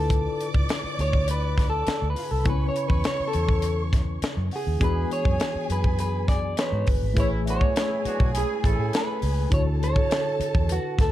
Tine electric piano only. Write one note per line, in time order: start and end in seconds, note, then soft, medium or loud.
0.00 2.11 D3 medium
0.00 2.12 D4 medium
0.00 2.12 E4 medium
0.00 2.12 F4 medium
0.00 2.16 B4 medium
2.44 4.76 C#3 medium
2.44 2.52 B3 soft
2.44 4.77 E4 medium
2.44 4.78 B4 medium
2.44 4.78 G#5 medium
2.51 4.80 C#4 medium
4.79 7.11 E3 medium
4.79 7.12 B3 medium
4.79 7.12 D4 medium
4.79 7.12 F#4 medium
4.79 7.13 G#4 medium
7.14 9.46 A3 medium
7.14 9.47 E4 medium
7.14 9.47 G#4 medium
7.14 9.47 B4 medium
7.18 7.24 C5 medium
7.24 9.51 C#5 medium
9.49 11.12 D3 medium
9.49 11.12 D4 medium
9.49 11.12 E4 medium
9.49 11.12 F#4 medium
9.49 11.12 C#5 medium